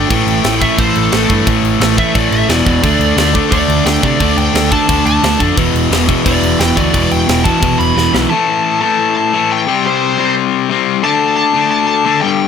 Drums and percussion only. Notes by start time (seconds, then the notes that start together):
0.10 kick, crash
0.28 crash
0.44 snare, crash
0.62 kick, crash
0.78 kick, crash
0.95 crash
1.12 snare, crash
1.30 kick, crash
1.47 kick, crash
1.65 crash
1.81 snare, crash
1.98 kick, crash
2.15 kick, crash
2.32 crash
2.49 snare, crash
2.66 kick, crash
2.83 kick, crash
3.01 crash
3.18 snare, crash
3.35 kick, crash
3.52 kick, crash
3.70 crash
3.86 snare, crash
4.03 kick, crash
4.20 kick, crash
4.38 crash
4.55 snare, crash
4.72 kick, crash
4.89 kick, crash
5.06 crash
5.24 snare, crash
5.40 kick, crash
5.58 kick, crash
5.76 crash
5.92 snare, crash
6.09 kick, crash
6.26 kick, crash
6.43 crash
6.60 snare, crash
6.77 kick, crash
6.94 kick, crash
7.11 crash
7.29 snare, crash
7.46 kick, crash
7.63 kick, crash
7.80 crash
7.98 snare
8.15 snare